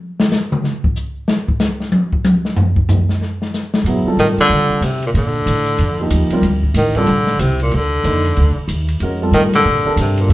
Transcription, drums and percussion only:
0.20 snare loud
0.32 snare medium
0.32 hi-hat pedal medium
0.52 mid tom medium
0.64 snare soft
0.84 kick medium
0.96 hi-hat pedal medium
1.28 snare loud
1.48 kick medium
1.60 snare medium
1.60 hi-hat pedal medium
1.80 snare soft
1.92 high tom loud
2.13 kick medium
2.24 hi-hat pedal medium
2.24 high tom loud
2.45 snare medium
2.56 floor tom loud
2.76 kick medium
2.89 floor tom loud
2.89 hi-hat pedal medium
3.09 snare soft
3.21 snare soft
3.42 snare medium
3.54 snare soft
3.54 hi-hat pedal medium
3.74 snare loud
3.86 ride medium
4.19 hi-hat pedal medium
4.19 ride medium
4.38 ride soft
4.51 ride medium
4.82 hi-hat pedal medium
4.82 ride medium
5.02 ride soft
5.15 ride medium
5.47 hi-hat pedal medium
5.47 ride medium
5.66 ride soft
5.78 ride medium
6.10 hi-hat pedal medium
6.10 ride medium
6.30 ride soft
6.43 snare soft
6.43 ride medium
6.63 kick medium
6.74 snare soft
6.74 hi-hat pedal medium
6.74 ride medium
6.95 kick soft
6.95 ride soft
7.07 ride medium
7.27 snare medium
7.39 hi-hat pedal medium
7.39 ride medium
7.59 ride soft
7.71 ride soft
8.04 hi-hat pedal soft
8.04 ride medium
8.25 ride soft
8.36 ride medium
8.68 hi-hat pedal medium
8.68 ride medium
8.88 ride soft
9.00 ride medium
9.33 hi-hat pedal soft
9.33 ride medium
9.53 snare medium
9.53 ride medium
9.97 hi-hat pedal medium
9.97 ride medium
10.17 ride soft
10.30 ride medium

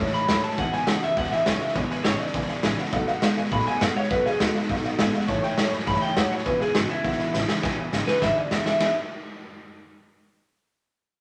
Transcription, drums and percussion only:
0.07 snare soft
0.14 snare soft
0.29 snare loud
0.29 hi-hat pedal medium
0.43 snare soft
0.51 snare soft
0.57 kick loud
0.57 snare soft
0.73 snare soft
0.87 snare loud
0.87 hi-hat pedal medium
1.02 snare soft
1.17 kick loud
1.17 snare soft
1.24 snare soft
1.32 snare soft
1.46 snare loud
1.46 hi-hat pedal medium
1.61 snare soft
1.69 snare soft
1.76 kick loud
1.76 snare soft
1.90 snare soft
2.05 snare loud
2.05 hi-hat pedal medium
2.19 snare soft
2.27 snare soft
2.34 kick loud
2.34 snare soft
2.41 snare soft
2.49 snare soft
2.63 snare loud
2.63 hi-hat pedal medium
2.78 snare soft
2.85 snare soft
2.92 kick loud
2.92 snare soft
3.07 snare soft
3.22 snare loud
3.22 hi-hat pedal medium
3.37 snare soft
3.45 snare soft
3.52 kick loud
3.52 snare soft
3.59 snare soft
3.66 snare soft
3.81 snare loud
3.81 hi-hat pedal medium
3.96 snare soft
4.04 snare soft
4.11 kick loud
4.11 snare soft
4.26 snare soft
4.40 snare loud
4.40 hi-hat pedal medium
4.55 snare soft
4.62 snare soft
4.69 kick loud
4.69 snare soft
4.77 snare soft
4.84 snare soft
4.99 snare loud
4.99 hi-hat pedal medium
5.14 snare soft
5.21 snare soft
5.28 kick loud
5.28 snare soft
5.43 snare soft
5.58 snare loud
5.58 hi-hat pedal medium
5.73 snare soft
5.80 snare soft
5.87 kick loud
5.87 snare soft
5.95 snare soft
6.02 snare soft
6.17 snare loud
6.17 hi-hat pedal medium
6.31 snare soft
6.39 snare soft
6.46 kick loud
6.46 snare soft
6.61 snare soft
6.75 snare loud
6.75 hi-hat pedal medium
6.90 snare soft
7.04 kick loud
7.04 snare soft
7.12 snare soft
7.19 snare soft
7.34 snare medium
7.34 hi-hat pedal medium
7.49 snare medium
7.63 kick loud
7.63 snare medium
7.93 snare medium
7.93 hi-hat pedal medium
8.08 snare medium
8.22 kick loud
8.22 snare medium
8.51 snare loud
8.51 hi-hat pedal medium
8.66 snare medium
8.80 snare medium
8.80 ride bell medium

